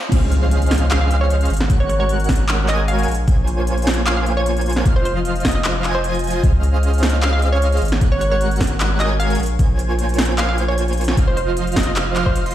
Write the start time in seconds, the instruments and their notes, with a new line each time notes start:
Already playing: riser
0.12 sub bass C#2, analog polysynth C#4 G#4 C5 D#5 F5, digital synth lead F6, kick, closed hi-hat, crash, impact
0.32 closed hi-hat
0.51 closed hi-hat
0.62 closed hi-hat
0.66 closed hi-hat
0.71 snare, closed hi-hat, open hi-hat
0.78 closed hi-hat
0.91 synth pluck F5, clap, closed hi-hat
1.01 synth pluck F5
1.10 analog polysynth C#4 G#4 C5 D#5 F5, digital synth lead F6, closed hi-hat
1.21 synth pluck C#5
1.30 closed hi-hat
1.41 closed hi-hat
1.45 closed hi-hat
1.50 sub bass G#1, closed hi-hat
1.53 closed hi-hat
1.57 snare, closed hi-hat
1.70 analog polysynth G#3 F#4 A#4 C#5 F#5, digital synth lead F#6, kick, closed hi-hat
1.80 synth pluck C#5
1.89 synth pluck C#5, closed hi-hat
2.00 synth pluck C#5
2.09 closed hi-hat
2.20 closed hi-hat
2.24 closed hi-hat
2.29 kick, snare, closed hi-hat, open hi-hat
2.35 closed hi-hat
2.49 clap, closed hi-hat
2.68 analog polysynth G#3 F#4 A#4 C#5 G#5, synth pluck D#5, digital synth lead G#6, clap, closed hi-hat
2.88 synth pluck F5, closed hi-hat
2.99 closed hi-hat
3.03 closed hi-hat
3.08 sub bass A#1, closed hi-hat
3.11 closed hi-hat
3.14 closed hi-hat
3.28 analog polysynth A#3 F4 C5 C#5 G#5, digital synth lead G#6, kick, closed hi-hat
3.47 closed hi-hat
3.67 closed hi-hat
3.78 closed hi-hat
3.82 closed hi-hat
3.87 snare, closed hi-hat, open hi-hat
3.93 closed hi-hat
4.07 synth pluck F5, clap, closed hi-hat
4.17 synth pluck F5
4.26 analog polysynth A#3 F4 C5 C#5 G#5, digital synth lead G#6, closed hi-hat
4.37 synth pluck C#5
4.46 closed hi-hat
4.57 closed hi-hat
4.61 closed hi-hat
4.66 closed hi-hat
4.69 closed hi-hat
4.72 snare, closed hi-hat
4.86 sub bass F1, analog polysynth F3 F4 C5 D#5 F5, digital synth lead F6, kick, closed hi-hat
4.96 synth pluck C5
5.05 synth pluck C5, closed hi-hat
5.25 closed hi-hat
5.36 closed hi-hat
5.40 closed hi-hat
5.45 synth pluck D#5, kick, snare, closed hi-hat, open hi-hat
5.51 synth pluck D#5, closed hi-hat
5.64 clap, closed hi-hat
5.84 analog polysynth F3 F4 C5 D#5 G#5, digital synth lead G#6, clap, closed hi-hat
5.95 synth pluck C5
6.04 closed hi-hat
6.14 closed hi-hat
6.19 closed hi-hat
6.24 closed hi-hat
6.27 closed hi-hat
6.30 closed hi-hat
6.43 sub bass C#2, analog polysynth C#4 G#4 C5 D#5 F5, digital synth lead F6, kick, closed hi-hat
6.63 closed hi-hat
6.83 closed hi-hat
6.94 closed hi-hat
6.98 closed hi-hat
7.03 snare, closed hi-hat, open hi-hat
7.09 closed hi-hat
7.22 synth pluck F5, clap, closed hi-hat
7.33 synth pluck F5
7.42 analog polysynth C#4 G#4 C5 D#5 F5, digital synth lead F6, closed hi-hat
7.53 synth pluck C#5
7.62 closed hi-hat
7.72 closed hi-hat
7.77 closed hi-hat
7.82 sub bass G#1, closed hi-hat
7.85 closed hi-hat
7.88 snare, closed hi-hat
8.01 analog polysynth G#3 F#4 A#4 C#5 F#5, digital synth lead F#6, kick, closed hi-hat
8.12 synth pluck C#5
8.21 synth pluck C#5, closed hi-hat
8.32 synth pluck C#5
8.41 closed hi-hat
8.51 closed hi-hat
8.56 closed hi-hat
8.61 kick, snare, closed hi-hat, open hi-hat
8.67 closed hi-hat
8.80 clap, closed hi-hat
9.00 analog polysynth G#3 F#4 A#4 C#5 G#5, synth pluck D#5, digital synth lead G#6, clap, closed hi-hat
9.20 synth pluck F5, closed hi-hat
9.30 closed hi-hat
9.35 closed hi-hat
9.39 sub bass A#1, closed hi-hat
9.43 closed hi-hat
9.46 closed hi-hat
9.59 analog polysynth A#3 F4 C5 C#5 G#5, digital synth lead G#6, kick, closed hi-hat
9.79 closed hi-hat
9.99 closed hi-hat
10.09 closed hi-hat
10.14 closed hi-hat
10.18 snare, closed hi-hat, open hi-hat
10.25 closed hi-hat
10.38 synth pluck F5, clap, closed hi-hat
10.49 synth pluck F5
10.58 analog polysynth A#3 F4 C5 C#5 G#5, digital synth lead G#6, closed hi-hat
10.68 synth pluck C#5
10.78 closed hi-hat
10.88 closed hi-hat
10.93 closed hi-hat
10.97 closed hi-hat
11.01 closed hi-hat
11.04 snare, closed hi-hat
11.17 sub bass F1, analog polysynth F3 F4 C5 D#5 F5, digital synth lead F6, kick, closed hi-hat
11.28 synth pluck C5
11.37 synth pluck C5, closed hi-hat
11.57 closed hi-hat
11.67 closed hi-hat
11.72 closed hi-hat
11.76 synth pluck D#5, kick, snare, closed hi-hat, open hi-hat
11.83 synth pluck D#5, closed hi-hat
11.96 clap, closed hi-hat
12.16 analog polysynth F3 F4 C5 D#5 F5, digital synth lead F6, clap, closed hi-hat
12.26 synth pluck C5, kick
12.36 closed hi-hat
12.46 analog polysynth F3 F4 C5 D#5 C6, digital synth lead C7, closed hi-hat
12.51 closed hi-hat